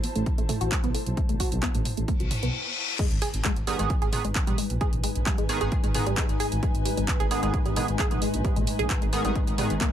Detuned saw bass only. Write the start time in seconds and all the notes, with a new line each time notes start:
0.16 A1
0.38 A1
0.61 A1
0.84 B1
1.07 B1
1.29 B1
1.52 B1
1.75 A1
1.97 A1
2.20 B1
2.43 B1
3.11 G#1
3.34 G#1
3.56 G#1
3.79 G#1
4.02 G#1
4.25 G#1
4.48 A#1
4.70 A#1
4.93 A#1
5.16 A#1
5.38 G#1
5.61 G#1
5.84 G#1
6.07 G#1
6.29 G#1
6.52 G#1
6.75 G#1
6.97 G#1
7.20 G#1
7.43 G#1
7.66 G#1
7.88 G#1
8.11 A#1
8.34 A#1
8.57 A#1
8.79 A#1
9.02 G#1
9.25 G#1
9.47 G#1
9.70 G#1